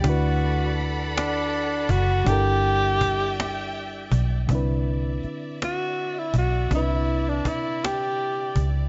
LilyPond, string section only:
\new Staff \with { instrumentName = "String section" } { \time 6/8 \key c \lydian \tempo 4. = 54 << { <a' fis'' b''>2. | <g' e'' g''>2. | e''2.~ | e''2. | } \\ { d''2.~ | d''2. | d''2.~ | d''2. | } >> }